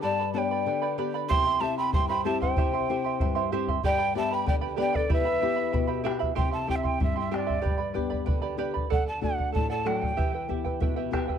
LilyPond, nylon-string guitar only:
\new Staff \with { instrumentName = "Nylon-string guitar" } { \time 2/4 \key c \lydian \tempo 4 = 95 <g, b d' g'>8 <b d' g'>8 d8 <b d' g'>8 | c8 <c' e' g'>8 g,8 <c' e' g'>8 | c8 <c' e' g'>8 g,8 <c' e' g'>8 | g,8 <b d' g'>8 d8 <b d' g'>8 |
e,8 <b e' g'>8 b,8 <b e' g'>8 | c8 <c' e' g'>8 g,8 <c' e' g'>8 | g,8 <b d' g'>8 d8 <b d' g'>8 | d8 <a d' fis'>8 a,8 <fis a d'>8 |
e8 <b e' g'>8 b,8 <b e' g'>8 | }